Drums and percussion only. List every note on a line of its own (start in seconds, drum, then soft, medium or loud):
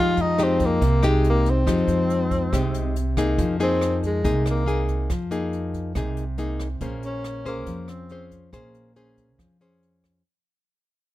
0.17 closed hi-hat soft
0.38 cross-stick medium
0.38 closed hi-hat soft
0.60 kick medium
0.60 closed hi-hat soft
0.82 kick medium
0.82 closed hi-hat medium
1.03 cross-stick medium
1.03 closed hi-hat soft
1.25 closed hi-hat soft
1.46 closed hi-hat soft
1.67 kick medium
1.67 cross-stick medium
1.67 closed hi-hat soft
1.88 closed hi-hat soft
2.10 closed hi-hat soft
2.31 kick soft
2.31 closed hi-hat soft
2.53 kick medium
2.53 cross-stick medium
2.53 closed hi-hat medium
2.74 closed hi-hat soft
2.96 closed hi-hat soft
3.17 kick medium
3.17 cross-stick medium
3.17 closed hi-hat soft
3.38 kick medium
3.38 closed hi-hat medium
3.60 closed hi-hat soft
3.81 cross-stick medium
3.81 closed hi-hat soft
4.03 kick soft
4.03 closed hi-hat soft
4.24 kick medium
4.24 closed hi-hat soft
4.46 cross-stick medium
4.46 closed hi-hat soft
4.68 closed hi-hat soft
4.88 kick soft
4.88 closed hi-hat soft
5.10 kick medium
5.10 cross-stick medium
5.10 closed hi-hat medium
5.31 closed hi-hat soft
5.53 closed hi-hat soft
5.74 kick soft
5.74 closed hi-hat soft
5.95 kick medium
5.95 cross-stick medium
5.95 closed hi-hat medium
6.17 closed hi-hat soft
6.38 closed hi-hat soft
6.60 kick soft
6.60 cross-stick medium
6.60 closed hi-hat soft
6.81 kick medium
6.81 closed hi-hat medium
7.03 closed hi-hat soft
7.24 cross-stick medium
7.24 closed hi-hat soft
7.45 kick soft
7.45 closed hi-hat soft
7.66 kick medium
7.66 closed hi-hat soft
7.88 cross-stick medium
7.88 closed hi-hat soft
8.09 closed hi-hat soft
8.31 kick soft
8.31 closed hi-hat soft
8.53 kick soft
8.53 cross-stick medium
8.53 closed hi-hat soft
8.74 closed hi-hat soft
8.96 closed hi-hat soft
9.17 kick soft
9.17 closed hi-hat soft
9.39 kick medium
9.39 cross-stick soft
9.39 closed hi-hat medium
9.61 closed hi-hat soft
9.83 closed hi-hat soft
10.04 kick soft
10.04 cross-stick soft
10.04 closed hi-hat soft